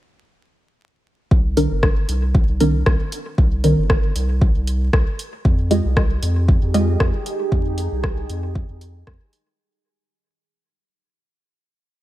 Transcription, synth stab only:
1.57 D#3 C4 D4 A#4
2.60 D#3 C4 D4 A#4
3.64 D#3 C4 D4 A#4
5.71 G#3 F4 G4 D#5
6.74 G#3 F4 G4 D#5

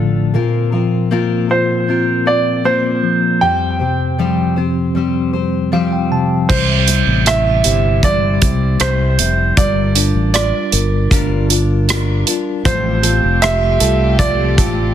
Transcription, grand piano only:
1.51 C5
2.27 D5
2.65 C5
3.41 G5
6.49 C5
7.27 E5
8.04 D5
8.81 C5
9.57 D5
10.34 D5
12.65 C5
13.42 E5
14.19 D5

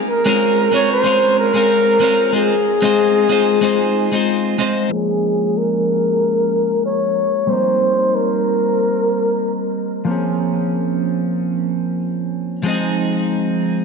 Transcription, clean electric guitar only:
0.26 G#3 C4 C#4 F4 A#4
0.72 G#3 C4 C#4 F4 A#4
1.04 G#3 C4 C#4 F4 A#4
1.54 G#3 C4 C#4 F4 A#4
2.00 G#3 C4 C#4 F4 A#4
2.33 G#3 C4 D#4 F4 C5
2.82 G#3 C4 D#4 F4 C5
3.29 G#3 C4 D#4 F4 C5
3.61 G#3 C4 D#4 F4 C5
4.12 G#3 C4 D#4 F4 C5
4.58 G#3 C4 D#4 F4 C5
4.89 F3 G#3 A#3
4.94 C#4 G#4
7.47 G3 A#3 C4
7.52 D#4 A#4
10.05 F3 A#3 C4
10.10 C#4 G#4
12.63 F3 G#3 C4
12.68 D#4 G#4

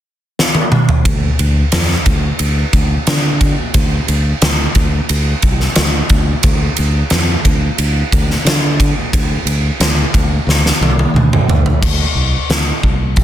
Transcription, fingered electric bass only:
1.05 D2
1.39 D2
1.73 F2
2.06 D2
2.40 D2
2.73 D2
3.07 D3
3.75 D2
4.09 D2
4.42 D2
4.76 D2
5.10 D2
5.43 C2
5.77 D2
6.10 D2
6.44 D2
6.79 D2
7.12 F2
7.46 D2
7.78 D2
8.13 D2
8.45 D3
9.14 D2
9.45 D2
9.80 D2
10.14 D2
10.47 D2
10.81 C2
11.14 D2
11.48 D2
11.83 D2
12.15 C2
12.50 D2
12.84 C2
13.17 A#1

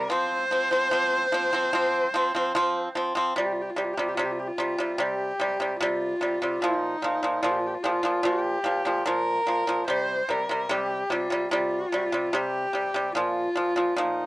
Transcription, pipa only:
0.10 F3 C4
0.51 F3 C4
0.71 F3 C4
0.91 F3 C4
1.32 F3 C4
1.53 F3 C4
1.73 F3 C4
2.14 F3 C4
2.35 F3 C4
2.55 F3 C4
2.95 F3 C4
3.15 F3 C4
3.36 C3 G3
3.76 C3 G3
3.97 C3 G3
4.17 C3 G3
4.58 C3 G3
4.78 C3 G3
4.98 C3 G3
5.40 C3 G3
5.60 C3 G3
5.80 C3 G3
6.21 C3 G3
6.42 C3 G3
6.62 A#2 F3
7.02 A#2 F3
7.23 A#2 F3
7.43 A#2 F3
7.84 A#2 F3
8.03 A#2 F3
8.23 A#2 F3
8.64 A#2 F3
8.85 A#2 F3
9.06 A#2 F3
9.47 A#2 F3
9.67 A#2 F3
9.88 C3 G3
10.29 C3 G3
10.49 C3 G3
10.69 C3 G3
11.10 C3 G3
11.30 C3 G3
11.51 C3 G3
11.92 C3 G3
12.12 C3 G3
12.33 C3 G3
12.73 C3 G3
12.94 C3 G3
13.15 A#2 F3
13.55 A#2 F3
13.76 A#2 F3
13.96 A#2 F3

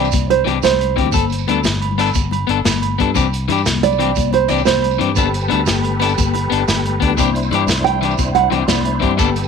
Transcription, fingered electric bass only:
0.14 C2
0.47 C2
0.64 C2
0.98 D2
1.15 G1
1.47 D2
1.64 G1
2.16 G1
2.49 G1
2.65 G1
3.00 G2
3.17 C2
3.49 G2
3.66 C2
4.17 C2
4.51 C2
4.67 C2
5.01 G2
5.17 G1
5.52 D2
5.68 G1
6.19 G1
6.52 G1
6.69 G1
7.02 D2
7.19 C2
7.51 G2
7.67 C2
8.19 C2
8.52 C2
8.68 C2
9.03 G2
9.19 G1

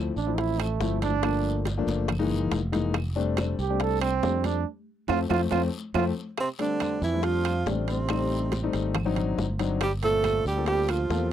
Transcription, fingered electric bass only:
Already playing: D2
0.16 A1
0.80 G1
1.87 F#1
2.52 F1
3.59 C2
4.24 F2
5.09 F2
5.30 F2
5.52 F2
5.94 F2
7.02 F2
7.66 A1
8.74 G#1
9.38 G1
10.45 D2
11.10 E2

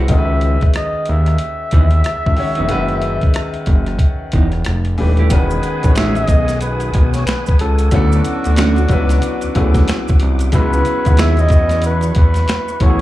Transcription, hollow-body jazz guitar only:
1.72 E3 B3 D#4
2.57 E3 B3 D#4
4.34 E3 B3 D#4
5.19 A3 E4 G4
5.97 G#3 D#4 F#4
8.57 A3 C#4 F#4
11.18 B3 E4 G#4

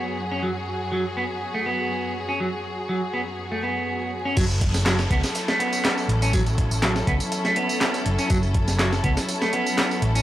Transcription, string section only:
Already playing: F#2 F#3 F#4 G#4
4.37 F#3 C#4 E4 A4

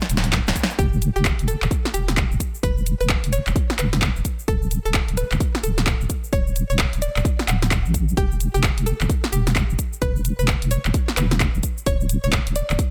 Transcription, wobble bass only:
0.10 D1
0.47 D1
0.79 E1
1.16 E1
1.39 E1
1.62 E1
1.94 E1
2.31 E1
2.63 E1
3.01 E1
3.24 E1
3.47 E1
3.79 E1
4.16 E1
4.48 D1
4.86 D1
5.09 D1
5.31 D1
5.63 D1
6.01 D1
6.33 D1
6.70 D1
6.93 D1
7.16 D1
7.48 D1
7.85 A1
8.17 E1
8.55 E1
8.78 E1
9.01 E1
9.33 E1
9.70 E1
10.02 E1
10.39 E1
10.62 E1
10.85 E1
11.17 E1
11.55 E1
11.86 D1
12.24 D1
12.47 D1
12.70 D1

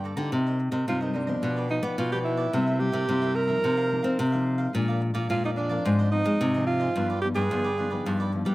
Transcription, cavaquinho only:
0.04 A4 D5 G5 A#5
0.17 D5 G5 A#5
0.32 D#4 A#4 C5 D#5
0.46 A#4 C5 D#5
0.59 muted cavaquinho stroke
0.71 A#4 C5 D#5
0.87 D#4 A#4 C5 D#5
1.01 A#4 C5 D#5
1.14 D#4 A#4 C5 D#5
1.27 A#4 C5 D#5
1.42 F4 G4 B4 D5
1.56 G4 B4 D5
1.69 muted cavaquinho stroke
1.82 G4 B4 D5
2.12 G4 B4 D5
2.37 G4 B4 D5
2.53 E4 A#4 C5 E5
2.66 A#4 C5 E5
2.80 muted cavaquinho stroke
2.92 A#4 C5 E5
3.08 E4 A#4 C5 E5
3.22 A#4 C5 E5
3.35 E4 A#4 C5 E5
3.47 A#4 C5 E5
3.63 D#4 A#4 C5 F5
3.77 A#4 C5 F5
3.90 muted cavaquinho stroke
4.03 A#4 C5 F5
4.32 A#4 C5 F5
4.58 A#4 C5 F5
4.73 G#4 A#4 D5 F5
4.88 A#4 D5 F5
5.01 muted cavaquinho stroke
5.14 A#4 D5 F5
5.30 G#4 A#4 D5 F5
5.44 A#4 D5 F5
5.56 G#4 A#4 D5 F5
5.69 A#4 D5 F5
5.85 F4 G#4 C5 D#5
5.99 G#4 C5 D#5
6.12 muted cavaquinho stroke
6.24 G#4 C5 D#5
6.54 G#4 C5 D#5
6.80 G#4 C5 D#5
6.95 F4 G4 B4 D5
7.10 G4 B4 D5
7.22 muted cavaquinho stroke
7.34 G4 B4 D5
7.50 F4 G4 B4 D5
7.64 G4 B4 D5
7.77 F4 G4 B4 D5
7.90 G4 B4 D5
8.06 F4 G4 B4 D5
8.20 G4 B4 D5
8.32 muted cavaquinho stroke
8.45 G4 B4 D5

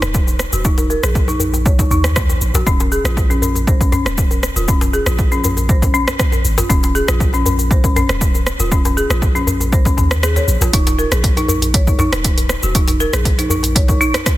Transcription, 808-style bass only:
0.02 D#1
0.53 D#1
1.03 A#1
1.91 D#2
2.41 A#1
2.54 A#1
3.04 A#1
4.05 D#1
4.56 D#1
5.06 A#1
6.45 G#1
6.70 D#1
7.08 A#1
8.09 D#1
8.60 D#1
9.10 A#1
9.98 D#2
10.48 A#1
10.61 A#1
10.73 D#1
11.12 A#1
12.12 D#1
12.63 D#1
13.13 A#1

